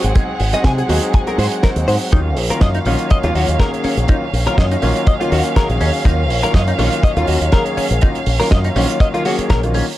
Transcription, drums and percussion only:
0.04 closed hi-hat medium
0.15 kick loud
0.15 closed hi-hat medium
0.40 open hi-hat loud
0.53 snare soft
0.53 closed hi-hat medium
0.64 kick medium
0.64 snare loud
0.64 closed hi-hat medium
0.78 closed hi-hat medium
0.89 open hi-hat loud
1.02 closed hi-hat medium
1.14 kick loud
1.14 closed hi-hat medium
1.27 closed hi-hat soft
1.39 open hi-hat loud
1.52 closed hi-hat medium
1.63 kick medium
1.63 snare loud
1.63 closed hi-hat medium
1.76 closed hi-hat medium
1.88 open hi-hat loud
2.01 open hi-hat medium
2.12 kick loud
2.12 closed hi-hat medium
2.37 open hi-hat loud
2.50 closed hi-hat medium
2.61 kick loud
2.61 snare loud
2.61 closed hi-hat medium
2.74 closed hi-hat soft
2.85 open hi-hat medium
2.98 closed hi-hat medium
3.10 kick loud
3.10 closed hi-hat medium
3.23 closed hi-hat medium
3.35 open hi-hat loud
3.48 closed hi-hat medium
3.60 kick loud
3.60 snare loud
3.60 closed hi-hat medium
3.74 closed hi-hat medium
3.84 open hi-hat loud
3.97 closed hi-hat medium
4.08 kick loud
4.08 closed hi-hat medium
4.34 open hi-hat loud
4.47 closed hi-hat medium
4.58 kick medium
4.58 snare loud
4.58 closed hi-hat medium
4.71 closed hi-hat medium
4.82 open hi-hat medium
4.96 closed hi-hat medium
5.07 kick loud
5.07 closed hi-hat medium
5.21 closed hi-hat soft
5.32 open hi-hat loud
5.45 closed hi-hat medium
5.56 kick loud
5.56 snare loud
5.56 closed hi-hat medium
5.70 closed hi-hat medium
5.81 open hi-hat loud
5.93 open hi-hat medium
6.05 kick loud
6.05 closed hi-hat medium
6.30 open hi-hat loud
6.43 closed hi-hat medium
6.54 kick medium
6.54 snare loud
6.54 closed hi-hat medium
6.67 closed hi-hat soft
6.79 open hi-hat loud
6.92 closed hi-hat medium
7.03 kick loud
7.03 closed hi-hat medium
7.17 closed hi-hat soft
7.27 open hi-hat loud
7.41 closed hi-hat medium
7.52 kick medium
7.52 snare loud
7.52 closed hi-hat medium
7.66 closed hi-hat medium
7.77 open hi-hat loud
7.91 closed hi-hat medium
8.01 kick loud
8.01 closed hi-hat medium
8.15 closed hi-hat medium
8.26 open hi-hat loud
8.40 snare soft
8.40 open hi-hat medium
8.51 kick loud
8.51 snare loud
8.51 closed hi-hat medium
8.64 closed hi-hat soft
8.76 open hi-hat loud
8.89 closed hi-hat medium
9.00 kick loud
9.00 closed hi-hat medium
9.14 closed hi-hat soft
9.25 open hi-hat medium
9.39 closed hi-hat medium
9.50 kick loud
9.50 snare loud
9.50 closed hi-hat medium
9.63 closed hi-hat medium
9.74 open hi-hat medium
9.88 open hi-hat medium

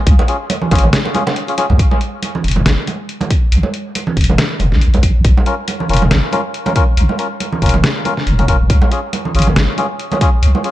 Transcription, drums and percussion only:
0.07 kick loud
0.07 closed hi-hat medium
0.19 muted conga medium
0.28 closed hi-hat medium
0.50 closed hi-hat medium
0.50 muted conga medium
0.50 high conga medium
0.62 low conga medium
0.71 kick loud
0.71 closed hi-hat soft
0.71 muted conga medium
0.75 closed hi-hat medium
0.78 closed hi-hat medium
0.84 high conga medium
0.84 low conga medium
0.93 snare loud
0.93 closed hi-hat medium
1.05 muted conga medium
1.15 closed hi-hat medium
1.15 high conga medium
1.27 snare soft
1.27 muted conga medium
1.36 closed hi-hat medium
1.48 closed hi-hat soft
1.58 closed hi-hat medium
1.58 muted conga medium
1.70 high conga medium
1.79 kick loud
1.79 closed hi-hat medium
1.91 high conga medium
2.01 closed hi-hat medium
2.22 closed hi-hat medium
2.22 high conga medium
2.35 low conga medium
2.44 closed hi-hat soft
2.48 closed hi-hat medium
2.51 closed hi-hat medium
2.56 high conga medium
2.56 low conga medium
2.66 snare loud
2.66 closed hi-hat medium
2.87 closed hi-hat medium
2.87 high conga medium
3.09 closed hi-hat medium
3.21 closed hi-hat soft
3.21 high conga medium
3.21 low conga medium
3.30 kick loud
3.30 closed hi-hat medium
3.52 closed hi-hat medium
3.63 high conga medium
3.74 closed hi-hat medium
3.95 closed hi-hat medium
3.95 high conga medium
4.07 low conga medium
4.17 kick medium
4.17 closed hi-hat soft
4.21 closed hi-hat medium
4.24 closed hi-hat medium
4.29 high conga medium
4.29 low conga medium
4.38 snare loud
4.38 closed hi-hat medium
4.59 closed hi-hat medium
4.59 high conga medium
4.72 snare soft
4.81 closed hi-hat medium
4.94 closed hi-hat soft
4.94 high conga loud
5.03 kick medium
5.03 closed hi-hat medium
5.25 kick loud
5.25 closed hi-hat medium
5.37 high conga loud
5.46 closed hi-hat medium
5.68 closed hi-hat medium
5.68 high conga medium
5.80 low conga medium
5.89 closed hi-hat soft
5.93 closed hi-hat medium
5.97 closed hi-hat medium
6.02 high conga loud
6.02 low conga medium
6.11 snare loud
6.11 closed hi-hat medium
6.33 closed hi-hat medium
6.33 high conga medium
6.54 closed hi-hat medium
6.66 closed hi-hat soft
6.66 high conga loud
6.66 low conga medium
6.76 kick loud
6.76 closed hi-hat medium
6.97 closed hi-hat medium
7.09 high conga medium
7.19 closed hi-hat medium
7.40 closed hi-hat medium
7.40 high conga medium
7.53 low conga medium
7.62 kick medium
7.62 closed hi-hat soft
7.66 closed hi-hat medium
7.69 closed hi-hat medium
7.74 high conga medium
7.74 low conga medium
7.84 snare loud
7.84 closed hi-hat medium
8.05 closed hi-hat medium
8.05 high conga medium
8.17 snare soft
8.27 closed hi-hat medium
8.39 closed hi-hat soft
8.39 high conga medium
8.48 kick medium
8.48 closed hi-hat medium
8.70 kick loud
8.70 closed hi-hat medium
8.82 high conga medium
8.92 closed hi-hat soft
9.13 closed hi-hat medium
9.13 high conga medium
9.25 low conga medium
9.35 closed hi-hat soft
9.39 closed hi-hat medium
9.42 closed hi-hat medium
9.47 high conga medium
9.47 low conga medium
9.56 snare loud
9.56 closed hi-hat medium
9.78 closed hi-hat soft
9.78 high conga medium
9.99 closed hi-hat soft
10.11 closed hi-hat soft
10.11 high conga medium
10.11 low conga medium
10.21 kick loud
10.21 closed hi-hat medium
10.43 closed hi-hat medium
10.55 high conga medium
10.64 closed hi-hat soft

